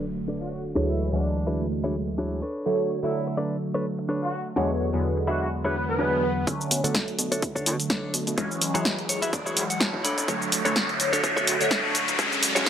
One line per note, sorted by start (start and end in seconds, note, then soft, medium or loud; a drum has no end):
0.00 0.73 D3 medium
0.00 0.73 F#3 medium
0.00 0.73 A3 medium
0.00 impact medium
0.17 muted clean electric guitar stroke soft
0.28 0.52 D4 medium
0.28 0.52 A4 medium
0.28 0.52 B4 medium
0.28 0.52 D5 medium
0.41 0.62 F#4 medium
0.75 1.10 D2 medium
0.75 1.10 E3 medium
0.75 1.10 F#3 medium
0.75 1.10 G#3 medium
0.75 1.10 A3 medium
0.75 0.89 D4 loud
0.75 0.89 E4 medium
0.75 0.89 F#4 loud
0.75 0.89 G#4 medium
0.75 1.10 C#5 loud
0.75 0.89 C#5 loud
0.89 1.10 E4 medium
0.99 muted clean electric guitar stroke soft
1.12 2.41 D2 medium
1.12 2.41 E3 medium
1.12 2.41 F#3 medium
1.12 2.41 G#3 medium
1.12 2.41 A3 medium
1.12 1.61 D4 medium
1.37 muted clean electric guitar stroke soft
1.47 1.66 D4 medium
1.47 1.66 E4 medium
1.47 1.66 F#4 medium
1.47 1.66 G#4 medium
1.47 1.66 B4 medium
1.84 1.95 D4 loud
1.84 1.95 E4 loud
1.84 1.95 F#4 medium
1.84 1.95 G#4 loud
1.84 1.95 C#5 loud
2.08 muted clean electric guitar stroke soft
2.18 2.41 D4 medium
2.18 2.42 E4 medium
2.18 2.42 F#4 medium
2.18 2.42 G#4 medium
2.18 2.41 C#5 medium
2.42 2.82 D4 medium
2.42 2.82 A4 medium
2.42 2.82 B4 medium
2.42 2.82 C#5 loud
2.66 3.00 D3 loud
2.66 3.00 F#3 medium
2.66 3.00 A3 medium
2.66 3.00 C#5 loud
2.90 muted clean electric guitar stroke soft
3.03 4.54 D3 medium
3.03 4.54 F#3 medium
3.03 4.54 A3 medium
3.03 3.38 E4 medium
3.27 muted clean electric guitar stroke soft
3.37 3.56 D4 medium
3.37 3.56 A4 medium
3.37 3.56 B4 medium
3.37 3.56 D5 loud
3.74 3.85 D4 medium
3.74 3.85 A4 medium
3.74 3.85 B4 loud
3.74 3.85 C#5 loud
3.98 muted clean electric guitar stroke soft
4.09 4.33 D4 medium
4.09 4.33 A4 medium
4.09 4.33 B4 medium
4.09 4.33 C#5 medium
4.23 4.43 F#4 medium
4.56 4.91 E2 medium
4.56 4.91 D3 medium
4.56 4.91 F#3 medium
4.56 4.91 G#3 medium
4.56 4.91 B3 medium
4.56 4.70 D4 loud
4.56 4.70 E4 medium
4.56 4.70 F#4 loud
4.56 4.70 G#4 medium
4.56 4.91 C#5 loud
4.56 4.70 C#5 loud
4.80 muted clean electric guitar stroke soft
4.93 6.44 E2 medium
4.93 6.44 D3 medium
4.93 6.45 F#3 medium
4.93 6.45 G#3 medium
4.93 6.45 B3 medium
5.17 muted clean electric guitar stroke soft
5.27 5.47 D4 medium
5.27 5.47 E4 medium
5.27 5.37 F#4 medium
5.27 5.47 F#4 medium
5.27 5.47 G#4 medium
5.27 5.47 E5 medium
5.42 5.48 F#4 medium
5.52 swell medium
5.65 5.76 D4 loud
5.65 5.76 E4 loud
5.65 5.76 F#4 medium
5.65 5.76 G#4 loud
5.65 5.72 B4 medium
5.65 5.76 C#5 loud
5.76 5.84 B4 medium
5.89 6.47 B4 medium
5.89 muted clean electric guitar stroke soft
5.99 6.23 D4 medium
5.99 6.23 E4 medium
5.99 6.23 F#4 medium
5.99 6.23 G#4 medium
5.99 6.23 C#5 medium
5.99 6.22 D5 medium
6.23 6.46 F#5 medium
6.47 6.56 B1 medium
6.47 6.81 D3 loud
6.47 6.81 F#3 medium
6.47 6.81 A3 medium
6.47 6.81 C#4 loud
6.47 muted clean electric guitar stroke loud
6.47 kick loud
6.47 closed hi-hat medium
6.47 riser medium
6.47 shaker soft
6.60 muted clean electric guitar stroke soft
6.60 shaker soft
6.71 6.80 B2 medium
6.71 open hi-hat loud
6.71 shaker medium
6.83 6.92 B2 medium
6.83 8.35 D3 medium
6.83 8.35 F#3 medium
6.83 8.35 A3 medium
6.83 7.08 D4 medium
6.83 7.08 A4 medium
6.83 7.08 C#5 loud
6.83 closed hi-hat medium
6.83 shaker soft
6.95 kick loud
6.95 snare loud
6.95 closed hi-hat medium
6.95 shaker soft
7.08 closed hi-hat soft
7.19 7.36 B2 medium
7.19 open hi-hat medium
7.19 shaker medium
7.32 7.42 D4 medium
7.32 7.42 A4 medium
7.32 7.42 C#5 loud
7.32 closed hi-hat medium
7.32 shaker soft
7.42 7.68 B1 medium
7.42 kick loud
7.42 closed hi-hat medium
7.42 shaker soft
7.55 7.73 D4 loud
7.55 7.73 A4 loud
7.55 7.73 C#5 loud
7.55 kick medium
7.55 shaker soft
7.66 7.75 B2 medium
7.66 open hi-hat loud
7.66 shaker medium
7.80 closed hi-hat soft
7.80 shaker soft
7.90 8.07 B1 loud
7.90 8.14 D4 medium
7.90 8.14 A4 medium
7.90 8.14 C#5 medium
7.90 kick loud
7.90 snare loud
7.90 closed hi-hat medium
7.90 shaker soft
8.14 8.23 B2 medium
8.14 open hi-hat medium
8.14 shaker medium
8.27 8.34 B2 medium
8.27 closed hi-hat soft
8.27 shaker soft
8.37 8.71 E3 loud
8.37 8.72 F#3 medium
8.37 8.72 G#3 medium
8.37 8.72 C#4 loud
8.37 muted clean electric guitar stroke loud
8.37 kick loud
8.37 closed hi-hat medium
8.37 shaker soft
8.51 muted clean electric guitar stroke soft
8.51 shaker soft
8.61 8.71 A1 medium
8.61 open hi-hat loud
8.61 shaker medium
8.74 8.82 A1 medium
8.74 10.03 E3 medium
8.74 10.03 F#3 medium
8.74 10.03 G#3 medium
8.74 8.99 E4 medium
8.74 8.99 F#4 medium
8.74 8.99 G#4 medium
8.74 8.99 C#5 medium
8.74 closed hi-hat medium
8.74 shaker soft
8.85 9.03 D2 loud
8.85 kick loud
8.85 snare loud
8.85 closed hi-hat medium
8.85 shaker soft
8.99 closed hi-hat soft
9.09 9.26 A1 medium
9.09 9.22 C#5 medium
9.09 open hi-hat medium
9.09 shaker medium
9.22 9.33 E4 medium
9.22 9.33 F#4 medium
9.22 9.33 G#4 medium
9.22 9.32 E5 loud
9.22 closed hi-hat medium
9.22 shaker soft
9.33 9.58 D2 medium
9.33 9.67 D5 medium
9.33 kick loud
9.33 closed hi-hat medium
9.33 shaker soft
9.46 9.63 E4 loud
9.46 9.63 F#4 medium
9.46 9.63 G#4 medium
9.46 9.63 C#5 loud
9.46 shaker soft
9.57 9.66 A1 medium
9.57 open hi-hat loud
9.57 shaker medium
9.70 9.80 F#5 medium
9.70 closed hi-hat soft
9.70 shaker soft
9.80 9.98 D2 loud
9.80 10.04 E4 loud
9.80 10.04 F#4 medium
9.80 10.04 G#4 medium
9.80 10.03 C#5 loud
9.80 10.03 A5 medium
9.80 kick loud
9.80 snare loud
9.80 closed hi-hat medium
9.80 shaker soft
9.94 kick medium
10.04 10.14 D2 medium
10.04 10.34 D4 medium
10.04 10.34 A4 medium
10.04 10.34 C#5 loud
10.04 10.27 B5 medium
10.04 open hi-hat medium
10.04 shaker medium
10.18 10.25 A1 medium
10.18 closed hi-hat soft
10.18 shaker soft
10.28 10.37 D2 loud
10.28 10.62 D3 medium
10.28 10.62 F#3 medium
10.28 10.62 A3 medium
10.28 10.62 C#5 loud
10.28 kick loud
10.28 closed hi-hat medium
10.28 shaker soft
10.41 muted clean electric guitar stroke soft
10.41 shaker soft
10.52 10.61 A1 medium
10.52 open hi-hat loud
10.52 shaker medium
10.64 10.73 A1 medium
10.64 11.21 D3 medium
10.64 11.22 F#3 medium
10.64 11.22 A3 medium
10.64 10.89 D4 medium
10.64 10.89 A4 medium
10.64 10.89 C#5 loud
10.64 11.22 C#5 medium
10.64 closed hi-hat medium
10.64 shaker soft
10.76 kick loud
10.76 snare loud
10.76 closed hi-hat medium
10.76 shaker soft
10.89 closed hi-hat soft
11.00 11.17 A1 medium
11.00 open hi-hat loud
11.00 shaker medium
11.13 11.23 D4 medium
11.13 11.23 A4 medium
11.13 11.24 C#5 loud
11.13 closed hi-hat soft
11.13 shaker soft
11.23 11.49 D2 medium
11.23 11.57 D3 medium
11.23 11.57 F#3 medium
11.23 11.58 A3 medium
11.23 11.58 C#5 loud
11.23 kick loud
11.23 closed hi-hat medium
11.23 shaker soft
11.36 11.54 D4 loud
11.36 11.54 A4 loud
11.36 11.54 C#5 loud
11.36 kick medium
11.36 shaker soft
11.47 11.56 A1 loud
11.47 open hi-hat loud
11.47 shaker medium
11.60 12.17 D3 medium
11.60 12.17 F#3 medium
11.60 12.17 A3 medium
11.60 12.17 C#5 medium
11.60 closed hi-hat soft
11.60 shaker soft
11.71 11.95 D4 loud
11.71 11.95 A4 medium
11.71 11.95 C#5 medium
11.71 kick loud
11.71 snare loud
11.71 closed hi-hat medium
11.71 shaker soft
11.95 12.04 A1 medium
11.95 open hi-hat medium
11.95 shaker medium
12.08 12.15 A1 medium
12.08 closed hi-hat soft
12.08 shaker soft
12.18 12.28 E2 loud
12.18 12.52 D3 loud
12.18 12.52 F#3 medium
12.18 12.53 G#3 medium
12.18 12.53 C#4 loud
12.18 muted clean electric guitar stroke loud
12.18 kick loud
12.18 closed hi-hat medium
12.18 shaker soft
12.32 muted clean electric guitar stroke soft
12.32 shaker soft
12.43 12.52 E1 medium
12.43 open hi-hat loud
12.43 shaker medium
12.55 12.63 E1 medium
12.55 12.64 D3 medium
12.55 12.65 F#3 medium
12.55 12.65 G#3 medium
12.55 12.65 C#4 loud
12.55 12.69 D4 medium
12.55 12.69 F#4 medium
12.55 12.69 G#4 medium
12.55 12.69 C#5 loud
12.55 closed hi-hat medium
12.55 shaker soft
12.66 kick loud
12.66 snare loud